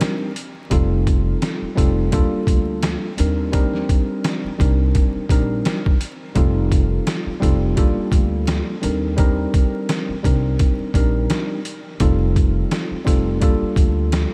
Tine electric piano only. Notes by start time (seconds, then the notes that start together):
Already playing: G3 C4 D4 D#4 A#4
0.70 G3 C4 D#4 F4 A4
1.75 G3 C4 D#4 F4 A4
2.11 G3 A#3 D4 F4 A4
3.17 G3 C4 D4 D#4 A#4
3.52 G3 C4 D4 D#4 A#4
4.58 G3 C4 D4 D#4 A#4
5.29 G3 C4 D4 D#4 A#4
6.35 G3 C4 D#4 F4 A4
7.40 G3 C4 D#4 F4 A4
7.76 G3 A#3 D4 F4 A4
8.82 G3 C4 D4 D#4 A#4
9.17 G3 C4 D4 D#4 A#4
10.23 G3 C4 D4 D#4 A#4
10.94 G3 C4 D4 D#4 A#4
12.00 G3 C4 D#4 F4 A4
13.04 G3 C4 D#4 F4 A4
13.41 G3 A#3 D4 F4 A4